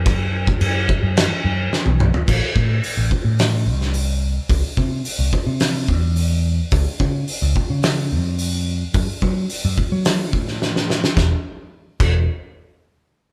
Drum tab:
CC |x---x---x-------|x---------------|----------------|----------------|
HH |----------------|----o---o---o---|o---o---o---o---|o---o---o---o---|
SD |--------o---o---|--------o--o----|--------o-------|--------o-------|
T1 |-------------o--|----------------|----------------|----------------|
T2 |--------------o-|----------------|----------------|----------------|
FT |---------------o|----------------|----------------|----------------|
BD |o--o--o---------|o-o---o---------|o-o---o---o-----|o-o---o---------|

CC |----------------|------x---------|
HH |o---o---o-------|----------------|
SD |--------o--ooooo|o---------------|
T1 |----------------|----------------|
T2 |----------------|----------------|
FT |----------------|----------------|
BD |o-o---o---o-----|o-----o---------|